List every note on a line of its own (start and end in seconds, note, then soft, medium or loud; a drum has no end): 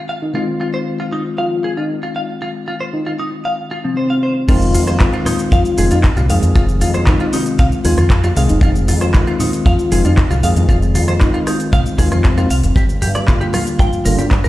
0.00 0.31 D#3 medium
0.00 0.31 G#3 medium
0.00 0.32 C4 medium
0.00 0.32 F4 medium
0.09 0.13 F5 medium
0.22 0.30 D#4 medium
0.34 4.45 D#3 medium
0.34 4.45 G#3 medium
0.34 4.46 C4 medium
0.34 0.43 D#4 medium
0.34 0.41 F4 medium
0.34 4.46 F4 medium
0.61 0.67 F4 medium
0.74 0.78 C5 medium
1.00 1.04 F4 medium
1.12 1.22 D#4 medium
1.38 1.74 F4 medium
1.38 1.45 F5 medium
1.64 1.71 G#4 medium
1.77 1.95 D#4 medium
1.77 1.84 F4 medium
2.03 2.07 F4 medium
2.16 2.20 F5 medium
2.42 2.48 F4 medium
2.68 2.74 F4 medium
2.81 2.84 C5 medium
2.93 3.02 D#4 medium
3.06 3.14 D#4 medium
3.06 3.10 F4 medium
3.19 3.29 D#4 medium
3.45 3.52 F5 medium
3.71 3.78 F4 medium
3.84 3.94 F3 medium
3.84 4.49 C4 loud
3.97 4.07 C5 medium
4.10 4.14 F5 medium
4.23 4.33 C5 medium
4.48 4.76 F1 medium
4.48 4.95 D#3 loud
4.48 4.95 G#3 medium
4.48 4.95 C4 medium
4.48 4.55 F4 medium
4.48 4.95 F4 loud
4.48 kick loud
4.48 closed hi-hat medium
4.48 crash loud
4.48 shaker soft
4.62 closed hi-hat soft
4.62 shaker soft
4.74 5.07 F2 loud
4.74 4.81 F4 medium
4.74 open hi-hat loud
4.74 high conga medium
4.74 shaker medium
4.87 4.91 C5 loud
4.87 cross-stick medium
4.87 closed hi-hat medium
4.87 high bongo medium
4.87 shaker soft
4.99 5.74 D#3 medium
4.99 5.75 G#3 medium
4.99 5.75 C4 medium
4.99 5.75 F4 medium
4.99 kick loud
4.99 clap loud
4.99 closed hi-hat medium
4.99 shaker soft
5.13 5.17 F4 medium
5.13 closed hi-hat soft
5.26 5.36 D#4 loud
5.26 cross-stick medium
5.26 open hi-hat medium
5.26 high bongo medium
5.26 low conga medium
5.26 shaker medium
5.39 closed hi-hat medium
5.39 shaker soft
5.52 5.61 F2 medium
5.52 5.88 F4 loud
5.52 5.59 F5 medium
5.52 kick loud
5.52 closed hi-hat medium
5.52 shaker soft
5.65 closed hi-hat soft
5.65 shaker soft
5.77 5.87 F1 loud
5.77 5.93 D#3 medium
5.77 5.94 G#3 medium
5.77 5.94 C4 medium
5.77 5.94 F4 medium
5.77 5.85 G#4 medium
5.77 open hi-hat loud
5.77 high conga medium
5.77 shaker medium
5.91 6.09 F2 medium
5.91 6.09 D#4 loud
5.91 5.98 F4 medium
5.91 closed hi-hat medium
5.91 high bongo medium
5.91 shaker soft
6.04 kick loud
6.04 clap loud
6.04 closed hi-hat medium
6.04 shaker soft
6.16 6.26 C2 loud
6.16 6.21 F4 medium
6.16 closed hi-hat soft
6.16 high bongo medium
6.16 low conga medium
6.16 shaker soft
6.28 6.39 F2 loud
6.28 7.04 D#3 medium
6.28 7.04 G#3 medium
6.28 7.04 C4 medium
6.28 7.05 G#4 medium
6.28 6.34 F5 medium
6.28 open hi-hat medium
6.28 shaker medium
6.43 6.52 F2 medium
6.43 closed hi-hat medium
6.43 high conga medium
6.43 shaker soft
6.56 6.83 F1 loud
6.56 6.62 F4 medium
6.56 kick loud
6.56 closed hi-hat medium
6.56 shaker soft
6.69 closed hi-hat soft
6.69 shaker soft
6.81 7.14 F2 loud
6.81 6.88 F4 medium
6.81 open hi-hat loud
6.81 high conga medium
6.81 shaker medium
6.94 6.98 C5 loud
6.94 cross-stick medium
6.94 closed hi-hat medium
6.94 high bongo medium
6.94 shaker soft
7.06 7.81 D#3 medium
7.06 7.82 G#3 medium
7.06 7.82 C4 medium
7.06 7.16 D#4 medium
7.06 7.82 F4 medium
7.06 kick loud
7.06 clap loud
7.06 closed hi-hat medium
7.06 shaker soft
7.20 7.29 D#4 medium
7.20 7.24 F4 medium
7.20 closed hi-hat soft
7.33 7.72 C4 loud
7.33 7.43 D#4 loud
7.33 open hi-hat medium
7.33 high bongo medium
7.33 shaker medium
7.46 closed hi-hat medium
7.46 shaker soft
7.59 7.68 C2 medium
7.59 7.66 F5 medium
7.59 kick loud
7.59 closed hi-hat medium
7.59 shaker soft
7.72 closed hi-hat soft
7.72 shaker soft
7.84 7.94 D#2 loud
7.84 8.00 D#3 medium
7.84 8.00 G#3 medium
7.84 8.01 C4 medium
7.84 7.93 F4 medium
7.84 8.01 F4 medium
7.84 7.92 G#4 medium
7.84 open hi-hat loud
7.84 high bongo medium
7.84 high conga medium
7.84 shaker medium
7.98 8.31 F2 medium
7.98 8.06 F4 medium
7.98 8.04 F4 medium
7.98 cross-stick medium
7.98 closed hi-hat medium
7.98 shaker soft
8.10 kick loud
8.10 clap loud
8.10 closed hi-hat medium
8.10 shaker soft
8.24 8.28 F4 medium
8.24 closed hi-hat soft
8.24 high bongo medium
8.24 shaker soft
8.36 8.46 C2 medium
8.36 9.11 D#3 medium
8.36 9.11 G#3 medium
8.36 9.11 C4 medium
8.36 9.12 G#4 medium
8.36 8.41 F5 medium
8.36 open hi-hat loud
8.36 shaker medium
8.49 8.59 F1 medium
8.49 8.58 D#4 medium
8.49 closed hi-hat medium
8.49 high conga medium
8.49 shaker soft
8.61 8.90 F1 loud
8.61 8.71 D#4 medium
8.61 8.69 F4 medium
8.61 kick loud
8.61 closed hi-hat medium
8.61 shaker soft
8.75 closed hi-hat soft
8.75 shaker soft
8.88 9.21 F2 loud
8.88 8.95 F4 medium
8.88 open hi-hat loud
8.88 high conga medium
8.88 shaker medium
9.01 9.05 C5 loud
9.01 cross-stick medium
9.01 closed hi-hat medium
9.01 high bongo medium
9.01 shaker soft
9.13 9.88 D#3 medium
9.13 9.89 G#3 medium
9.13 9.89 C4 medium
9.13 9.89 F4 medium
9.13 kick loud
9.13 clap loud
9.13 closed hi-hat medium
9.13 shaker soft
9.27 9.31 F4 medium
9.27 closed hi-hat soft
9.40 9.50 D#4 loud
9.40 open hi-hat loud
9.40 high bongo medium
9.40 low conga medium
9.40 shaker medium
9.53 closed hi-hat medium
9.53 shaker soft
9.66 9.75 F2 medium
9.66 10.02 F4 loud
9.66 9.73 F5 medium
9.66 kick loud
9.66 closed hi-hat medium
9.66 shaker soft
9.79 closed hi-hat soft
9.79 shaker soft
9.91 10.01 F1 loud
9.91 10.07 D#3 medium
9.91 10.08 G#3 medium
9.91 10.08 C4 medium
9.91 10.08 F4 medium
9.91 9.98 G#4 medium
9.91 open hi-hat loud
9.91 high conga medium
9.91 shaker medium
10.05 10.23 F2 medium
10.05 10.23 D#4 medium
10.05 10.11 F4 medium
10.05 closed hi-hat medium
10.05 high bongo medium
10.05 shaker soft
10.17 kick loud
10.17 clap loud
10.17 closed hi-hat medium
10.17 shaker soft
10.31 10.40 C2 loud
10.31 10.34 F4 medium
10.31 closed hi-hat soft
10.31 high bongo medium
10.31 low conga medium
10.31 shaker soft
10.43 10.53 F2 loud
10.43 11.18 D#3 medium
10.43 11.18 G#3 medium
10.43 11.18 C4 medium
10.43 11.18 G#4 medium
10.43 10.47 F5 medium
10.43 open hi-hat loud
10.43 shaker medium
10.56 10.66 F2 medium
10.56 closed hi-hat medium
10.56 high conga loud
10.56 shaker soft
10.69 10.97 F1 loud
10.69 10.76 F4 medium
10.69 kick loud
10.69 closed hi-hat medium
10.69 shaker soft
10.82 closed hi-hat soft
10.82 shaker soft
10.95 11.28 F2 loud
10.95 11.02 F4 medium
10.95 open hi-hat loud
10.95 high conga medium
10.95 shaker medium
11.08 11.12 C5 loud
11.08 cross-stick medium
11.08 closed hi-hat soft
11.08 high bongo medium
11.08 shaker soft
11.20 11.95 D#3 medium
11.20 11.95 G#3 medium
11.20 11.96 C4 medium
11.20 11.29 D#4 medium
11.20 11.96 F4 medium
11.20 kick loud
11.20 clap loud
11.20 closed hi-hat soft
11.20 shaker soft
11.34 11.42 D#4 medium
11.34 11.38 F4 medium
11.34 closed hi-hat soft
11.47 11.57 D#4 loud
11.47 cross-stick medium
11.47 open hi-hat medium
11.47 high bongo medium
11.47 shaker medium
11.60 closed hi-hat medium
11.60 shaker soft
11.73 11.82 C2 medium
11.73 11.79 F5 medium
11.73 kick loud
11.73 closed hi-hat medium
11.73 shaker soft
11.86 closed hi-hat soft
11.86 shaker soft
11.98 12.08 D#2 loud
11.98 12.34 D#3 medium
11.98 12.34 G#3 medium
11.98 12.35 C4 medium
11.98 12.35 F4 medium
11.98 12.05 G#4 medium
11.98 kick medium
11.98 open hi-hat loud
11.98 high bongo medium
11.98 high conga medium
11.98 shaker medium
12.11 12.45 F2 loud
12.11 12.81 C4 loud
12.11 12.18 F4 medium
12.11 cross-stick medium
12.11 closed hi-hat medium
12.11 shaker soft
12.24 kick loud
12.24 clap loud
12.24 closed hi-hat medium
12.24 shaker soft
12.37 12.47 D#3 medium
12.37 12.47 G#3 medium
12.37 12.47 C4 medium
12.37 12.41 F4 medium
12.37 12.48 F4 medium
12.37 closed hi-hat soft
12.37 high bongo medium
12.37 shaker soft
12.50 12.60 C2 medium
12.50 12.54 F5 medium
12.50 open hi-hat loud
12.50 shaker medium
12.63 12.73 F1 medium
12.63 closed hi-hat medium
12.63 high conga medium
12.63 shaker soft
12.76 13.04 G1 loud
12.76 12.83 G4 medium
12.76 kick loud
12.76 closed hi-hat medium
12.76 shaker soft
12.89 closed hi-hat soft
12.89 shaker soft
13.02 13.35 G2 loud
13.02 13.09 G4 medium
13.02 open hi-hat loud
13.02 high conga medium
13.02 shaker medium
13.15 13.19 D5 loud
13.15 cross-stick medium
13.15 closed hi-hat soft
13.15 high bongo medium
13.15 shaker soft
13.27 14.02 D3 medium
13.27 14.02 G3 medium
13.27 14.03 A#3 medium
13.27 14.03 F4 medium
13.27 kick loud
13.27 clap loud
13.27 closed hi-hat soft
13.27 shaker soft
13.41 13.45 G4 medium
13.41 closed hi-hat soft
13.53 13.64 F4 loud
13.53 cross-stick medium
13.53 open hi-hat loud
13.53 high bongo medium
13.53 low conga medium
13.53 shaker medium
13.67 closed hi-hat medium
13.67 shaker soft
13.79 13.89 G2 medium
13.79 14.16 F4 loud
13.79 13.86 G5 medium
13.79 kick loud
13.79 closed hi-hat medium
13.79 shaker soft
13.93 closed hi-hat soft
13.93 shaker soft
14.05 14.15 G1 loud
14.05 14.21 D3 medium
14.05 14.21 G3 medium
14.05 14.21 A#3 medium
14.05 14.21 F4 medium
14.05 14.12 A#4 medium
14.05 open hi-hat loud
14.05 high conga medium
14.05 shaker medium
14.18 14.37 G2 medium
14.18 14.36 D4 loud
14.18 14.25 G4 medium
14.18 closed hi-hat medium
14.18 high bongo medium
14.18 shaker soft
14.31 kick loud
14.31 clap loud
14.31 closed hi-hat medium
14.31 shaker soft
14.44 14.49 D2 loud
14.44 14.49 A#4 loud
14.44 closed hi-hat soft
14.44 high bongo medium
14.44 low conga medium
14.44 shaker soft